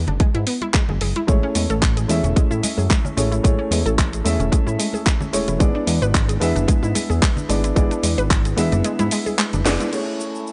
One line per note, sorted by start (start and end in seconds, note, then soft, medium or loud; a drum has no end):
0.07 0.18 F#1 medium
0.07 0.13 D4 medium
0.07 closed hi-hat soft
0.07 low conga medium
0.20 0.29 G#3 loud
0.20 kick loud
0.20 closed hi-hat medium
0.35 0.45 G#2 medium
0.35 0.38 E4 loud
0.35 closed hi-hat soft
0.47 0.56 B3 medium
0.47 open hi-hat loud
0.62 0.65 E4 loud
0.62 closed hi-hat soft
0.62 high conga medium
0.74 0.83 G#3 medium
0.74 kick loud
0.74 clap loud
0.74 closed hi-hat medium
0.89 0.99 F#1 medium
0.89 0.94 G#3 medium
0.89 low conga medium
1.01 1.13 F#1 medium
1.01 1.07 G#4 medium
1.01 open hi-hat loud
1.16 1.21 E4 medium
1.16 closed hi-hat soft
1.16 high conga medium
1.27 1.40 A1 medium
1.27 1.37 G#3 loud
1.27 2.06 A3 medium
1.27 2.06 C#4 medium
1.27 2.06 E4 medium
1.27 2.06 G#4 medium
1.27 2.07 C#5 medium
1.27 kick loud
1.27 closed hi-hat medium
1.27 cabasa soft
1.43 1.46 C#4 loud
1.55 1.67 E2 medium
1.55 1.64 G#3 medium
1.55 open hi-hat loud
1.55 cabasa medium
1.70 2.06 A1 medium
1.70 1.73 A4 loud
1.70 closed hi-hat soft
1.70 cabasa soft
1.82 1.86 G#3 medium
1.82 kick loud
1.82 clap loud
1.82 closed hi-hat medium
1.82 cabasa soft
1.97 2.02 G#4 medium
1.97 closed hi-hat soft
1.97 cabasa soft
2.08 2.21 E2 medium
2.08 2.13 G#3 medium
2.08 3.14 A3 medium
2.08 3.14 C#4 medium
2.08 3.14 E4 medium
2.08 3.15 G#4 medium
2.08 3.15 E5 medium
2.08 open hi-hat loud
2.08 cabasa medium
2.24 2.34 E1 medium
2.24 2.29 C#4 medium
2.24 closed hi-hat soft
2.24 low conga medium
2.24 cabasa soft
2.36 2.48 A2 soft
2.36 2.45 G#3 loud
2.36 kick loud
2.36 closed hi-hat medium
2.36 cabasa soft
2.51 2.61 A2 medium
2.51 2.54 E4 loud
2.51 cabasa soft
2.63 2.72 G#3 medium
2.63 open hi-hat loud
2.63 high conga medium
2.63 cabasa medium
2.78 2.88 F#2 medium
2.78 2.83 G#4 medium
2.78 cabasa soft
2.90 2.94 G#3 loud
2.90 kick loud
2.90 clap loud
2.90 closed hi-hat medium
2.90 cabasa soft
3.05 3.10 C#4 medium
3.05 low conga medium
3.05 cabasa soft
3.17 3.40 A1 medium
3.17 3.21 G#3 medium
3.17 3.41 A3 medium
3.17 3.41 C#4 medium
3.17 3.41 E4 medium
3.17 3.41 G#4 medium
3.17 3.42 C#5 medium
3.17 open hi-hat loud
3.17 cabasa medium
3.32 3.37 E4 medium
3.32 closed hi-hat soft
3.32 cabasa soft
3.43 3.56 A1 loud
3.43 3.53 G#3 loud
3.43 4.22 A3 medium
3.43 4.22 C#4 medium
3.43 4.22 E4 medium
3.43 4.23 G#4 medium
3.43 4.23 C#5 medium
3.43 kick loud
3.43 closed hi-hat medium
3.43 cabasa soft
3.59 3.62 C#4 loud
3.71 3.83 E2 loud
3.71 3.80 G#3 medium
3.71 open hi-hat loud
3.71 cabasa medium
3.86 4.22 A1 medium
3.86 3.89 A4 loud
3.86 closed hi-hat soft
3.86 cabasa soft
3.98 4.02 G#3 medium
3.98 kick loud
3.98 clap loud
3.98 closed hi-hat medium
3.98 cabasa soft
4.13 4.18 G#4 medium
4.13 closed hi-hat medium
4.13 cabasa soft
4.24 4.37 E2 medium
4.24 4.29 G#3 medium
4.24 5.30 A3 medium
4.24 5.30 C#4 medium
4.24 5.31 E4 medium
4.24 5.31 G#4 medium
4.24 5.31 E5 loud
4.24 open hi-hat loud
4.24 cabasa medium
4.40 4.50 E1 loud
4.40 4.45 C#4 medium
4.40 closed hi-hat soft
4.40 low conga medium
4.40 cabasa soft
4.52 4.61 G#3 loud
4.52 kick loud
4.52 closed hi-hat medium
4.52 cabasa soft
4.67 4.77 A2 medium
4.67 4.70 E4 loud
4.67 cabasa soft
4.79 4.88 G#3 medium
4.79 open hi-hat loud
4.79 cabasa medium
4.93 4.99 G#4 medium
4.93 high conga medium
4.93 cabasa soft
5.06 5.10 G#3 loud
5.06 kick loud
5.06 clap loud
5.06 closed hi-hat medium
5.06 cabasa soft
5.21 5.26 C#4 medium
5.21 low conga medium
5.21 cabasa soft
5.33 5.45 E1 soft
5.33 5.37 G#3 medium
5.33 5.57 A3 medium
5.33 5.57 C#4 medium
5.33 5.57 E4 medium
5.33 5.58 G#4 medium
5.33 5.58 C#5 medium
5.33 open hi-hat loud
5.33 cabasa medium
5.48 5.58 E1 medium
5.48 5.53 E4 medium
5.48 closed hi-hat medium
5.48 high conga medium
5.48 cabasa soft
5.59 5.72 G#1 loud
5.59 5.69 G#3 medium
5.59 6.38 B3 medium
5.59 6.38 D4 medium
5.59 6.38 E4 medium
5.59 6.39 G#4 medium
5.59 6.39 D5 loud
5.59 kick loud
5.59 closed hi-hat medium
5.59 cabasa soft
5.75 5.78 D4 loud
5.87 5.99 E2 loud
5.87 5.96 G#3 medium
5.87 open hi-hat loud
5.87 cabasa medium
6.02 6.38 G#1 medium
6.02 6.05 B4 loud
6.02 closed hi-hat soft
6.02 cabasa soft
6.14 6.18 G#3 medium
6.14 kick loud
6.14 clap loud
6.14 closed hi-hat medium
6.14 cabasa soft
6.29 6.34 G#4 medium
6.29 closed hi-hat medium
6.29 cabasa soft
6.40 6.53 E2 medium
6.40 6.45 G#3 medium
6.40 7.46 B3 medium
6.40 7.46 D4 medium
6.40 7.47 E4 medium
6.40 7.47 G#4 medium
6.40 7.47 E5 loud
6.40 open hi-hat medium
6.40 cabasa medium
6.56 6.66 F#1 medium
6.56 6.61 D4 medium
6.56 closed hi-hat soft
6.56 low conga medium
6.56 cabasa soft
6.68 6.80 G#2 soft
6.68 6.77 G#3 loud
6.68 kick loud
6.68 closed hi-hat medium
6.68 cabasa soft
6.83 6.93 G#2 medium
6.83 6.86 E4 loud
6.83 cabasa soft
6.95 7.04 G#3 medium
6.95 open hi-hat loud
6.95 high conga medium
6.95 cabasa medium
7.10 7.20 E2 loud
7.10 7.15 G#4 medium
7.10 cabasa soft
7.22 7.26 G#3 loud
7.22 kick loud
7.22 clap loud
7.22 closed hi-hat medium
7.22 cabasa soft
7.37 7.42 D4 medium
7.37 low conga medium
7.37 cabasa soft
7.49 7.72 G#1 medium
7.49 7.53 G#3 medium
7.49 7.73 B3 medium
7.49 7.73 D4 medium
7.49 7.74 E4 medium
7.49 7.74 G#4 medium
7.49 7.74 D5 medium
7.49 open hi-hat loud
7.49 cabasa medium
7.64 7.69 E4 medium
7.64 closed hi-hat medium
7.64 cabasa soft
7.75 7.89 G#1 loud
7.75 7.85 G#3 loud
7.75 8.54 B3 medium
7.75 8.54 D4 medium
7.75 8.55 E4 medium
7.75 8.55 G#4 medium
7.75 8.55 D5 medium
7.75 kick loud
7.75 closed hi-hat medium
7.75 cabasa soft
7.91 7.94 D4 loud
7.91 closed hi-hat soft
7.91 cabasa soft
8.03 8.16 E2 medium
8.03 8.13 G#3 medium
8.03 open hi-hat loud
8.03 cabasa medium
8.18 8.54 G#1 medium
8.18 8.21 B4 loud
8.18 closed hi-hat soft
8.18 cabasa soft
8.30 8.34 G#3 medium
8.30 kick loud
8.30 clap loud
8.30 closed hi-hat medium
8.30 cabasa soft
8.45 8.50 G#4 medium
8.45 closed hi-hat medium
8.45 cabasa soft
8.56 8.70 E2 medium
8.56 8.61 G#3 medium
8.56 9.62 B3 medium
8.56 9.62 D4 medium
8.56 9.63 E4 medium
8.56 9.63 G#4 medium
8.56 9.63 E5 loud
8.56 open hi-hat loud
8.56 cabasa medium
8.72 8.82 F#1 medium
8.72 8.77 D4 medium
8.72 closed hi-hat soft
8.72 high conga medium
8.72 low conga medium
8.72 cabasa soft
8.84 8.94 G#3 loud
8.84 closed hi-hat medium
8.84 cabasa soft
8.99 9.10 G#2 medium
8.99 9.02 E4 loud
8.99 closed hi-hat soft
8.99 high conga medium
8.99 cabasa soft
9.11 9.21 G#3 medium
9.11 open hi-hat loud
9.11 cabasa medium
9.26 9.31 G#4 medium
9.26 high conga medium
9.26 cabasa soft
9.39 9.42 G#3 loud
9.39 clap loud
9.39 closed hi-hat medium
9.39 cabasa soft
9.53 9.64 F#1 loud
9.53 9.59 D4 medium
9.53 closed hi-hat soft
9.53 low conga medium
9.53 cabasa soft
9.65 9.78 F#1 medium
9.65 9.69 G#3 medium
9.65 9.90 B3 medium
9.65 9.90 D4 medium
9.65 9.90 E4 medium
9.65 9.90 G#4 medium
9.65 9.90 D5 medium
9.65 snare medium
9.65 open hi-hat loud
9.65 cabasa medium
9.80 9.86 E4 medium
9.80 closed hi-hat medium
9.80 high conga medium
9.80 cabasa soft
9.92 10.52 A3 medium
9.92 10.52 C#4 medium
9.92 10.52 E4 medium
9.92 10.52 G#4 medium
9.92 10.52 C#5 medium
9.92 10.52 G#5 medium
9.92 10.52 C#6 medium
9.92 crash medium
9.92 cabasa soft
10.20 cabasa medium
10.35 cabasa soft
10.47 cabasa soft